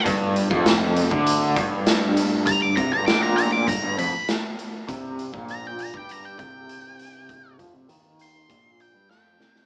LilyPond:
<<
  \new Staff \with { instrumentName = "Lead electric guitar" } { \time 4/4 \key c \major \tempo 4 = 100 r1 | bes''16 d'''16 bes''16 bes''16 d'''16 bes''16 bes''16 d'''16 bes''8 b''8 r4 | r4 bes''16 g''16 bes''16 g''16 bes''16 g''16 g''4.~ | g''8 r4 c'''4 g''8 g''4 | }
  \new Staff \with { instrumentName = "Overdriven electric guitar" } { \clef bass \time 4/4 \key c \major g,8. f,4 d8. g,4.~ | g,8 c16 g,16 bes,4 g,16 g,16 f,16 r4 r16 | c8. bes,4 g8. c4.~ | c8 f16 c16 ees4 bes,8. g16 f8 c8 | }
  \new Staff \with { instrumentName = "Picked electric bass" } { \clef bass \time 4/4 \key c \major g,,8. f,,4 d,8. g,,4.~ | g,,8 c,16 g,,16 bes,,4 g,,16 g,,16 f,,16 r4 r16 | c,8. bes,,4 g,8. c,4.~ | c,8 f,16 c,16 ees,4 bes,,8. g,16 f,8 c,8 | }
  \new DrumStaff \with { instrumentName = "Drums" } \drummode { \time 4/4 <hh bd>8 hh16 bd16 <hh sn>8 hh16 bd16 hh8 <hh bd>8 <hh sn>8 hh8 | <hh bd>8 <hh bd>8 <hh sn>8 hh8 <hh bd>8 hh8 <hh sn>8 hh8 | <hh bd>8 hh16 bd16 hh8 hh16 bd16 hh8 <hh bd>8 hh8 hh8 | <hh bd>8 <hh bd>8 hh8 hh8 <hh bd>8 hh8 sn8 sn16 sn16 | }
>>